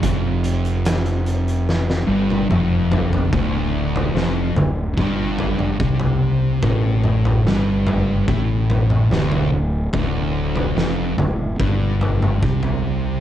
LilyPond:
<<
  \new Staff \with { instrumentName = "Distorted electric guitar" } { \clef bass \time 4/4 \key d \minor \tempo 4 = 73 f,2~ f,8 g,8 f,4 | d,4 f,8 d,8 g,4 c4 | a,4 g,4 a,4 d,8 d,8 | d,4 f,8 d,8 g,4 c4 | }
  \new Staff \with { instrumentName = "Fingered electric bass" } { \clef bass \time 4/4 \key d \minor f,,2~ f,,8 g,,8 f,,4 | d,,4 f,,8 d,,8 g,,4 c,4 | a,,4 g,,4 a,,4 d,,8 d,,8 | d,,4 f,,8 d,,8 g,,4 c,4 | }
  \new DrumStaff \with { instrumentName = "Drums" } \drummode { \time 4/4 <hh bd>8 hh16 hh16 <hh sn>16 hh16 hh16 hh16 sn16 sn8 tommh16 toml8 tomfh16 tomfh16 | <bd tomfh>8. tomfh16 sn8 <tomfh toml>8 bd8 tomfh16 toml16 bd16 tomfh8. | <bd tomfh>8 toml16 tomfh16 sn8 <tomfh toml>8 bd8 tomfh16 toml16 <sn toml>16 tomfh8. | <bd tomfh>8. tomfh16 sn8 <tomfh toml>8 bd8 tomfh16 toml16 bd16 tomfh8. | }
>>